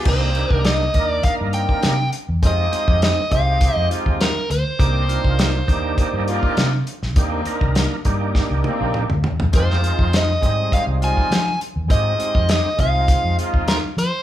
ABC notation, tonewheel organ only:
X:1
M:4/4
L:1/8
Q:1/4=101
K:Cm
V:1 name="Tonewheel organ"
[B,DEG] [B,DEG]2 [B,DEB]3 z2 | [A,CEG] [A,CEG]2 [A,CEG]3 z2 | [B,DEG] [B,DEF]2 [B,DEG]3 z2 | [B,DEG] [B,DEB]2 [B,DEG]3 z2 |
[A,CEG] [A,CEF]2 [G,A,CE]3 z2 | [A,CEG] [A,CEG]2 [A,CEF]3 z2 |]